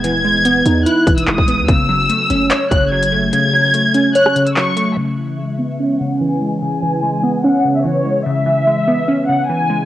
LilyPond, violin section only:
\new Staff \with { instrumentName = "Violin section" } { \time 4/4 \key cis \minor \tempo 4 = 146 gis'''2 fis'''8. e'''16 dis'''4 | e'''2~ e'''8 fis'''8 gis'''4 | gis'''2 fis'''8. e'''16 cis'''4 | e''2~ e''8 fis''8 gis''4 |
gis''2 fis''8. e''16 cis''4 | e''2~ e''8 fis''8 gis''4 | }